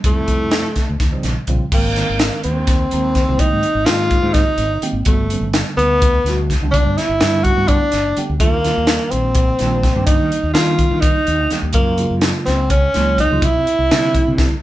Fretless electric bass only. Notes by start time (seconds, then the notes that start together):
0.05 F2
0.89 D2
1.01 D#2
1.24 A#1
1.36 muted fretless electric bass stroke
1.48 A#1
1.61 muted fretless electric bass stroke
1.72 G#1
2.10 G#1
2.45 D#2
2.93 D#2
3.29 C2
3.53 G#2
3.75 G#1
3.88 G#2
4.22 G#2
4.47 muted fretless electric bass stroke
4.58 G#1
4.69 G1
4.81 muted fretless electric bass stroke
4.93 G#1
5.06 G1
5.41 G1
5.77 D2
6.25 D2
6.61 C#2
6.86 G2
7.09 G1
7.21 G2
7.57 G2
7.82 muted fretless electric bass stroke
7.93 G1
8.06 F#1
8.18 muted fretless electric bass stroke
8.29 D2
8.40 D#2
8.77 D#2
9.13 A#1
9.61 A#1
9.96 G2
10.19 D#3
10.43 D#2
10.54 D#3
10.91 D#3
11.14 muted fretless electric bass stroke
11.28 D#2
11.40 D2
11.62 D#2
11.74 F#2
12.11 F#2
12.47 C#2
12.96 C#2
13.32 C#2
13.42 C2
13.56 C3
13.79 C2
13.91 C3
14.27 C3
14.52 muted fretless electric bass stroke